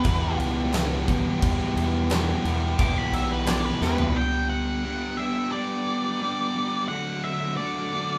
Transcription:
0.00 1.05 B3 medium
0.00 1.05 E4 medium
0.00 1.05 G4 medium
0.00 0.37 B4 loud
0.00 1.05 B4 medium
0.04 0.33 E2 loud
0.04 0.71 E2 loud
0.04 0.72 B2 loud
0.04 0.72 E3 medium
0.04 0.74 G3 loud
0.04 0.74 B3 loud
0.04 0.74 G4 loud
0.04 kick loud
0.04 clap medium
0.04 crash medium
0.39 1.25 C#2 medium
0.39 crash medium
0.73 1.06 E2 medium
0.73 1.07 B2 medium
0.73 1.07 E3 medium
0.73 1.08 G3 medium
0.73 1.09 B3 medium
0.73 1.09 G4 medium
0.73 snare loud
0.73 clap loud
0.73 crash medium
1.07 1.41 E2 medium
1.07 1.41 B2 medium
1.07 1.42 E3 medium
1.07 1.42 G3 medium
1.07 1.42 B3 medium
1.07 4.13 E4 medium
1.07 4.13 G4 medium
1.07 1.42 G4 medium
1.07 4.13 B4 medium
1.07 kick medium
1.07 crash medium
1.42 2.08 E2 medium
1.42 1.57 E2 loud
1.42 2.09 B2 loud
1.42 2.10 E3 loud
1.42 2.10 G3 loud
1.42 2.10 B3 loud
1.42 2.11 G4 medium
1.42 kick loud
1.42 crash medium
1.76 2.33 E2 medium
1.76 crash medium
2.10 2.43 E2 medium
2.10 2.44 B2 medium
2.10 2.44 E3 medium
2.10 2.45 G3 medium
2.10 2.45 B3 loud
2.10 2.45 G4 medium
2.10 snare loud
2.10 clap loud
2.10 crash medium
2.44 2.77 E2 medium
2.44 2.73 E2 medium
2.44 2.78 B2 medium
2.44 2.78 E3 medium
2.44 2.78 G3 medium
2.44 2.79 B3 loud
2.44 2.79 G4 loud
2.44 crash medium
2.78 3.45 E2 medium
2.78 2.94 E2 loud
2.78 3.46 B2 medium
2.78 3.46 E3 loud
2.78 3.47 G3 loud
2.78 3.47 B3 loud
2.78 3.47 G4 loud
2.78 2.98 D6 loud
2.78 kick loud
2.78 crash medium
2.98 3.14 B5 medium
3.13 3.70 B1 medium
3.13 3.31 E5 medium
3.13 crash medium
3.32 3.48 B4 medium
3.46 3.80 E2 medium
3.46 3.80 B2 medium
3.46 3.81 E3 medium
3.46 3.81 G3 medium
3.46 3.81 B3 loud
3.46 3.82 G4 medium
3.46 3.65 D5 medium
3.46 snare loud
3.46 clap loud
3.46 crash medium
3.65 3.82 B4 medium
3.81 4.14 E2 medium
3.81 4.10 E2 loud
3.81 4.14 B2 medium
3.81 4.14 E3 medium
3.81 4.14 G3 medium
3.81 4.14 B3 medium
3.81 4.15 G4 medium
3.81 4.16 B4 loud
3.81 snare medium
3.98 floor tom medium
4.15 4.83 G3 medium
4.15 6.87 B3 medium
4.15 4.83 B3 medium
4.15 6.87 D4 medium
4.15 4.84 D4 medium
4.15 6.87 G4 medium
4.15 4.84 G4 loud
4.15 6.87 B4 medium
4.15 4.49 G5 loud
4.50 5.21 F#5 loud
4.84 5.17 G3 medium
4.84 5.18 B3 medium
4.84 5.19 D4 medium
4.84 5.18 G4 loud
5.17 5.52 G3 medium
5.17 5.52 B3 medium
5.17 5.53 D4 loud
5.17 5.53 G4 loud
5.17 5.50 E5 loud
5.52 6.20 G3 loud
5.52 6.21 B3 medium
5.52 6.21 D4 loud
5.52 6.22 G4 loud
5.52 6.85 D5 loud
6.22 6.55 G3 medium
6.22 6.56 B3 medium
6.22 6.56 D4 loud
6.22 6.56 G4 loud
6.56 6.88 G3 medium
6.56 6.88 B3 medium
6.56 6.89 D4 medium
6.56 6.89 G4 loud
6.88 7.57 D3 medium
6.88 7.57 F#3 loud
6.88 8.18 A3 medium
6.88 7.58 A3 loud
6.88 8.18 D4 medium
6.88 7.58 D4 loud
6.88 8.18 F#4 medium
6.88 7.59 F#4 loud
6.88 8.18 A4 medium
6.88 7.24 F#5 loud
7.24 7.56 E5 medium
7.57 7.92 D3 medium
7.57 7.92 F#3 medium
7.57 7.92 A3 medium
7.57 7.93 D4 medium
7.57 7.93 F#4 medium
7.57 8.18 D5 medium
7.93 8.18 D3 loud
7.93 8.18 F#3 medium
7.93 8.18 A3 loud
7.93 8.18 D4 loud
7.93 8.18 F#4 medium

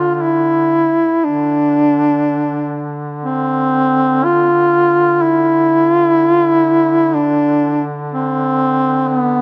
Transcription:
0.00 1.08 D3 soft
0.00 0.14 F4 loud
0.14 0.23 F4 medium
0.22 1.26 E4 medium
1.24 9.42 D3 soft
1.24 2.97 D4 medium
3.24 4.26 C4 medium
4.24 5.23 F4 medium
5.22 5.92 E4 loud
5.92 6.07 F4 loud
6.07 6.31 E4 loud
6.31 6.45 F4 loud
6.45 7.16 E4 loud
7.14 7.84 D4 loud
8.12 9.09 C4 medium
9.07 9.42 B3 medium

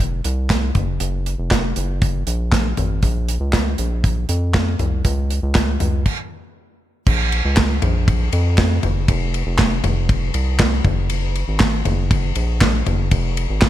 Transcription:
0.00 0.21 F1 medium
0.00 kick loud
0.00 closed hi-hat medium
0.24 0.72 C2 medium
0.24 closed hi-hat medium
0.50 kick loud
0.50 snare loud
0.50 clap medium
0.50 closed hi-hat medium
0.75 0.99 F#1 medium
0.75 kick medium
0.75 closed hi-hat medium
0.75 floor tom medium
1.00 1.36 F#1 medium
1.00 closed hi-hat medium
1.26 closed hi-hat medium
1.38 1.74 F1 medium
1.51 kick loud
1.51 snare loud
1.51 clap medium
1.51 closed hi-hat medium
1.76 2.23 F#1 medium
1.76 closed hi-hat medium
2.02 kick loud
2.02 closed hi-hat medium
2.27 2.74 A#1 medium
2.27 closed hi-hat medium
2.52 kick loud
2.52 snare loud
2.52 clap medium
2.52 closed hi-hat medium
2.77 3.01 G#1 medium
2.77 closed hi-hat medium
2.77 floor tom medium
3.03 3.38 A#1 medium
3.03 kick medium
3.03 closed hi-hat medium
3.29 closed hi-hat medium
3.40 3.76 C#2 medium
3.53 kick medium
3.53 snare loud
3.53 clap medium
3.53 closed hi-hat medium
3.78 4.25 A#1 medium
3.78 closed hi-hat medium
4.04 kick loud
4.04 closed hi-hat medium
4.29 4.76 F2 medium
4.29 closed hi-hat medium
4.54 kick loud
4.54 snare loud
4.54 clap medium
4.54 closed hi-hat medium
4.79 5.03 C2 medium
4.79 closed hi-hat medium
4.79 floor tom medium
5.05 5.40 C#2 loud
5.05 kick medium
5.05 closed hi-hat medium
5.30 closed hi-hat medium
5.43 5.78 C#2 medium
5.55 kick loud
5.55 snare loud
5.55 clap medium
5.55 closed hi-hat medium
5.80 6.04 C#2 medium
5.80 closed hi-hat medium
5.80 floor tom medium
6.06 kick medium
6.06 crash medium
7.07 7.42 A#1 medium
7.07 kick loud
7.07 crash medium
7.32 ride medium
7.45 7.80 C#2 medium
7.57 kick loud
7.57 snare loud
7.57 clap medium
7.57 ride medium
7.82 8.29 A#1 loud
7.82 floor tom medium
7.82 ride medium
8.08 kick loud
8.08 ride medium
8.33 8.80 F2 loud
8.33 ride medium
8.58 kick loud
8.58 snare loud
8.58 clap medium
8.58 ride medium
8.83 9.07 F#1 medium
8.83 floor tom medium
8.83 ride soft
9.08 9.44 F1 loud
9.08 kick loud
9.08 ride medium
9.34 ride medium
9.46 9.81 F1 loud
9.58 kick loud
9.58 snare loud
9.58 clap loud
9.58 ride medium
9.84 10.31 F1 loud
9.84 floor tom medium
9.84 ride medium
10.09 kick loud
10.09 ride medium
10.34 10.81 C2 medium
10.34 ride medium
10.59 kick loud
10.59 snare loud
10.59 clap medium
10.59 ride medium
10.85 11.44 F#1 loud
10.85 kick loud
10.85 floor tom medium
10.85 ride soft
11.10 ride medium
11.36 ride medium
11.48 11.83 G#1 medium
11.60 kick loud
11.60 snare loud
11.60 clap loud
11.60 ride medium
11.85 12.32 F#1 loud
11.85 floor tom medium
11.85 ride medium
12.11 kick loud
12.11 ride medium
12.35 12.83 A#1 loud
12.35 ride medium
12.61 kick loud
12.61 snare loud
12.61 clap medium
12.61 ride medium
12.86 13.10 F#1 loud
12.86 floor tom medium
12.86 ride soft
13.11 13.47 F1 loud
13.11 kick medium
13.11 ride medium
13.37 ride medium
13.49 13.69 G#1 medium
13.61 kick loud
13.61 snare loud
13.61 clap loud
13.61 ride medium

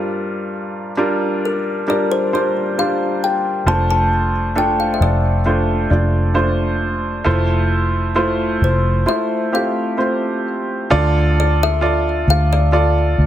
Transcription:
0.00 0.94 G2 soft
0.00 0.91 G3 medium
0.00 0.91 D4 medium
0.00 0.91 F4 medium
0.00 0.91 A#4 medium
0.97 1.83 G3 medium
0.97 1.83 D4 medium
0.97 1.83 F4 medium
0.97 1.84 A#4 medium
1.45 1.86 A#4 medium
1.87 2.30 G3 medium
1.87 2.30 D4 medium
1.87 2.31 F4 soft
1.87 2.31 A#4 medium
1.87 2.12 D5 medium
2.11 2.32 C5 medium
2.33 2.75 G3 soft
2.33 2.75 D4 medium
2.33 2.75 F4 soft
2.33 2.75 C5 medium
2.33 2.80 D5 medium
2.78 3.63 G3 medium
2.78 3.63 D4 medium
2.78 3.63 F4 medium
2.78 3.63 C5 medium
2.78 3.24 F5 medium
3.24 3.69 G5 medium
3.66 4.96 F1 medium
3.66 4.52 A3 medium
3.66 4.52 D4 medium
3.66 4.52 F4 medium
3.66 4.52 C5 medium
3.66 3.88 A5 medium
3.90 4.59 A5 medium
4.56 5.41 A3 medium
4.56 5.41 D4 medium
4.56 5.41 F4 medium
4.56 5.41 A4 medium
4.56 4.80 G5 medium
4.80 4.95 F5 medium
4.94 5.01 E5 medium
5.00 5.86 F1 medium
5.00 6.77 D5 medium
5.46 5.88 A3 medium
5.46 5.88 D4 medium
5.46 5.88 F4 medium
5.46 5.89 C5 medium
5.90 7.22 F1 medium
5.90 6.33 A3 medium
5.90 6.33 D4 soft
5.90 6.33 F4 soft
5.90 6.34 D5 medium
6.34 7.21 A3 medium
6.34 7.21 D4 medium
6.34 7.21 F4 medium
6.34 7.21 C5 medium
7.24 8.57 F1 medium
7.24 8.11 A3 medium
7.24 8.11 E4 medium
7.24 8.11 F4 medium
7.24 8.11 C5 medium
8.15 9.02 A3 medium
8.15 9.02 E4 medium
8.15 9.02 F4 medium
8.15 9.02 C5 medium
8.62 9.04 F1 medium
8.62 9.09 C5 medium
9.06 9.50 A3 medium
9.06 9.50 E4 medium
9.06 9.50 F4 medium
9.06 9.50 C5 medium
9.06 9.55 E5 medium
9.52 9.96 A3 medium
9.52 9.96 C4 soft
9.52 9.97 F4 soft
9.52 9.97 G4 medium
9.52 10.42 F5 medium
9.97 10.86 A3 medium
9.97 10.86 C4 soft
9.97 10.86 F4 soft
9.97 10.86 C5 medium
10.90 12.24 D2 loud
10.90 12.23 D3 medium
10.90 11.77 F4 medium
10.90 11.77 A4 medium
10.90 11.78 D5 loud
11.40 11.62 D5 medium
11.63 12.26 E5 medium
11.81 12.68 F4 medium
11.81 12.68 A4 medium
11.81 12.68 D5 medium
12.28 13.14 D2 medium
12.28 12.52 F5 medium
12.53 13.26 D5 medium
12.72 13.26 F4 medium
12.72 13.26 A4 medium
12.72 13.26 D5 medium
13.18 13.26 D2 medium

